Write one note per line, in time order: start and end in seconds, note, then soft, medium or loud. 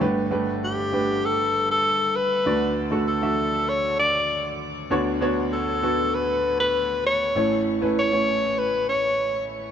0.01 2.42 G1 medium
0.01 2.42 G2 medium
0.01 0.21 A3 medium
0.01 0.21 D4 medium
0.01 0.21 G4 medium
0.01 0.21 B4 medium
0.31 0.71 A3 medium
0.31 0.71 D4 medium
0.31 0.71 G4 medium
0.31 0.72 B4 medium
0.64 1.27 G4 medium
0.92 1.72 A3 medium
0.92 1.72 D4 medium
0.92 1.72 G4 medium
0.92 1.73 B4 medium
1.25 1.70 A4 medium
1.71 2.17 A4 medium
2.16 2.77 B4 loud
2.46 4.87 D2 medium
2.46 4.87 D3 medium
2.46 2.76 A3 medium
2.46 2.76 D4 medium
2.46 2.76 F#4 medium
2.46 2.76 D5 medium
2.91 3.11 A3 medium
2.91 3.12 D4 medium
2.91 3.12 F#4 medium
2.91 3.12 A4 medium
3.08 3.70 A4 medium
3.22 4.01 A3 medium
3.22 4.02 D4 medium
3.22 4.02 F#4 medium
3.22 4.02 E5 medium
3.69 3.99 C#5 loud
3.99 4.57 D5 loud
4.90 7.32 D2 medium
4.90 7.32 D3 medium
4.90 5.11 B3 medium
4.90 5.11 D4 medium
4.90 5.11 F#4 medium
4.90 5.11 C#5 loud
5.21 5.61 B3 medium
5.21 5.61 D4 medium
5.21 5.61 F#4 medium
5.21 5.62 C#5 medium
5.53 6.16 A4 medium
5.82 6.62 B3 medium
5.82 6.62 D4 medium
5.82 6.62 F#4 medium
5.82 6.62 A4 medium
6.14 6.59 B4 loud
6.60 7.02 B4 loud
7.06 7.63 C#5 loud
7.35 9.71 A1 medium
7.35 9.71 A2 medium
7.35 7.65 A3 medium
7.35 7.66 C#4 medium
7.35 7.66 E4 medium
7.35 7.66 C#5 medium
7.81 8.01 A3 medium
7.81 8.02 C#4 medium
7.81 8.02 E4 medium
7.81 8.02 B4 medium
7.99 8.60 C#5 loud
8.12 8.91 A3 medium
8.12 8.92 C#4 medium
8.12 8.92 E4 medium
8.12 8.92 C#5 medium
8.59 8.88 B4 loud
8.89 9.46 C#5 medium